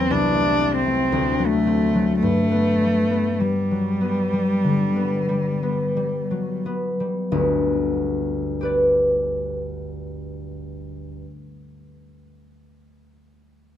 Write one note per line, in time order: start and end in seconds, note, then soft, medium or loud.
0.00 0.14 E2 medium
0.00 0.14 G3 soft
0.00 0.14 B3 soft
0.00 0.13 C4 medium
0.00 0.14 D4 soft
0.11 1.16 C2 soft
0.11 0.76 D4 medium
0.35 0.84 A3 soft
0.60 1.66 C4 soft
0.76 1.48 C4 medium
0.86 2.26 A3 soft
1.12 2.27 D2 soft
1.39 1.93 F#3 soft
1.47 2.21 A3 medium
1.67 2.27 C4 soft
1.95 2.27 F#3 soft
2.21 6.12 G2 soft
2.21 3.41 A3 medium
2.51 3.09 B3 soft
2.81 3.39 G3 soft
3.11 4.00 B3 soft
3.39 6.64 G3 medium
3.39 4.32 G3 soft
3.71 4.23 F#3 soft
4.01 4.94 B3 soft
4.33 5.28 G3 soft
4.64 7.37 D3 soft
4.96 5.62 B3 soft
5.29 5.95 G3 soft
5.63 6.64 B3 soft
5.97 6.99 G3 soft
6.31 6.89 F#3 soft
6.66 10.56 B3 soft
7.00 10.90 G3 soft
7.32 11.22 G1 soft
7.32 11.22 D2 soft
8.61 11.88 G4 soft
8.61 11.90 B4 soft
8.65 11.93 D5 soft